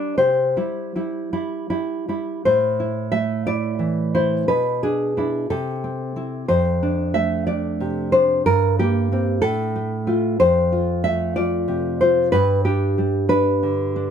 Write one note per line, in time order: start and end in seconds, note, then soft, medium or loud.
0.00 0.15 G3 medium
0.00 0.15 D4 medium
0.00 0.17 D5 loud
0.18 0.56 C3 medium
0.18 1.29 C5 loud
0.57 0.94 G3 medium
0.57 0.95 E4 medium
0.96 1.32 G3 medium
0.96 1.32 E4 medium
1.33 1.69 G3 medium
1.33 1.69 E4 medium
1.70 2.07 G3 medium
1.70 2.08 E4 medium
2.08 2.41 G3 medium
2.08 2.41 E4 medium
2.45 4.45 A2 medium
2.45 3.10 C5 loud
2.80 3.46 E4 medium
3.12 4.15 A3 medium
3.12 3.45 E5 loud
3.47 4.13 E4 medium
3.47 4.12 D5 loud
3.79 4.48 E3 medium
4.15 4.48 E4 medium
4.15 4.47 C5 loud
4.48 5.45 B2 medium
4.48 4.81 B4 loud
4.83 5.16 D4 medium
4.83 5.46 G#4 loud
5.17 5.46 D4 medium
5.17 5.46 E4 medium
5.50 6.46 C3 medium
5.50 6.44 A4 loud
5.84 6.15 C4 medium
6.16 6.45 C4 medium
6.16 6.45 E4 medium
6.48 8.41 F2 medium
6.48 7.11 C5 loud
6.83 7.46 D4 medium
7.14 8.12 A3 medium
7.14 7.46 E5 loud
7.47 8.12 D4 medium
7.47 8.09 D5 medium
7.80 8.45 C3 medium
8.12 8.45 D4 medium
8.12 8.44 C5 loud
8.46 9.39 G2 medium
8.46 8.77 A#4 loud
8.79 9.11 A#3 medium
8.79 9.40 G4 loud
9.12 9.40 A#3 medium
9.12 9.40 C4 medium
9.42 10.36 A2 loud
9.42 10.35 A4 loud
9.76 10.06 A3 medium
10.07 10.36 A3 medium
10.07 10.36 F4 medium
10.40 12.30 F2 medium
10.40 11.01 C5 loud
10.72 11.35 F4 medium
11.04 12.01 A3 medium
11.04 11.34 E5 loud
11.36 12.00 F4 medium
11.36 11.98 D5 loud
11.68 12.33 C3 medium
12.01 12.33 F4 medium
12.01 12.32 C5 loud
12.32 14.11 G2 medium
12.32 12.64 B4 loud
12.65 13.28 D4 medium
12.65 13.28 G4 medium
12.98 13.96 G3 medium
13.29 13.95 D4 medium
13.29 14.11 B4 loud
13.63 14.11 D3 medium
13.96 14.11 D4 medium